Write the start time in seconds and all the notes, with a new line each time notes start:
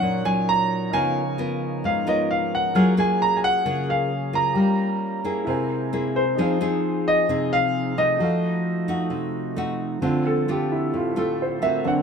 Already playing: F#3 C#4 D#4 C#5 F#5 F6
0.02 A#2
0.25 F#3 C#4 F4 G#5
0.49 A#5
0.90 C#3 F3 B3 C#4 D#4 F4 A#4 G#5
0.94 C#5 F5
1.38 B3 F4 A#4
1.84 G#2 F5
2.06 B3 D#4 F4 A#4 C#5 D#5 F5
2.31 F5
2.55 F#5
2.74 F#3 A#3 C#4 F4 G#4 A#4 F6
2.78 G#5
2.97 A#3 F4 G#4 G#5
3.22 A#5
3.37 G#5
3.44 F#5
3.65 C#3 A#3 F4 G#4
3.87 A#4 F5 G#5
4.33 A#3 F4 A#5
4.53 G3 G4
4.57 A#4 F5 A#5
5.24 A#3 E4 G#4
5.45 C3 G#3 C4 E4 A#4
5.49 C5 G#5
5.93 A#3 E4 G#4
6.16 C5
6.35 F3 C4 D#4 G#4 C5
6.41 F5
6.61 C4 D#4 G#4
7.08 D#5
7.29 C3 C4 D#4 G#4
7.53 F5
7.98 A3 D#4 D#5
8.17 F3 A3 D#4 F#4
8.22 A4 F5
8.88 A3 D#4 F#4
9.10 C3
9.56 A3 D#4 F#4
10.01 D3 F3 A3 C4 F4
10.27 A4
10.48 A3 C4 F4 G4
10.72 E4
10.94 A2 F4
11.16 A3 C4 F4 A4
11.42 C5
11.62 A#3 C4 F#4 E5
11.84 D3 F#3 A#3 C4 F#4 F#5